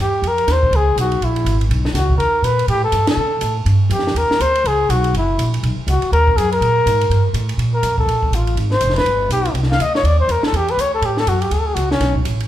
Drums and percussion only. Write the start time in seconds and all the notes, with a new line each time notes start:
0.24 ride
0.38 ride
0.48 snare, hi-hat pedal, ride
0.63 kick
0.73 ride
0.98 hi-hat pedal, ride
1.12 ride
1.22 ride
1.36 ride
1.46 hi-hat pedal, ride
1.61 ride
1.71 ride
1.85 snare
1.95 snare, hi-hat pedal, ride
2.10 kick
2.20 ride
2.44 hi-hat pedal, ride
2.59 ride
2.68 ride
2.92 hi-hat pedal, ride
3.07 snare, ride
3.41 hi-hat pedal, ride
3.66 ride
3.91 hi-hat pedal, ride
3.99 snare
4.07 snare
4.16 ride
4.31 snare
4.41 hi-hat pedal, ride
4.55 ride
4.65 ride
4.90 hi-hat pedal, ride
5.04 ride
5.15 ride
5.39 hi-hat pedal, ride
5.54 ride
5.63 ride
5.88 hi-hat pedal, ride
6.02 ride
6.13 ride
6.27 kick
6.38 hi-hat pedal, ride
6.52 ride
6.62 ride
6.87 hi-hat pedal, ride
7.01 ride
7.11 ride
7.34 hi-hat pedal, ride
7.49 ride
7.59 ride
7.83 hi-hat pedal, ride
7.98 kick
8.09 ride
8.23 kick
8.33 hi-hat pedal, ride
8.47 ride
8.57 ride
8.71 snare
8.81 hi-hat pedal, ride
8.90 snare
8.96 snare, ride
9.06 ride
9.31 hi-hat pedal, ride
9.45 ride
9.55 ride
9.63 snare
9.72 snare
9.80 hi-hat pedal, ride
9.95 snare
10.05 ride
10.29 hi-hat pedal, ride
10.43 snare
10.54 ride
10.68 ride
10.79 hi-hat pedal, ride
11.02 ride
11.17 snare
11.27 hi-hat pedal, ride
11.42 ride
11.51 ride
11.76 hi-hat pedal, ride
11.91 snare
12.01 snare, ride
12.15 kick
12.25 hi-hat pedal, ride
12.40 ride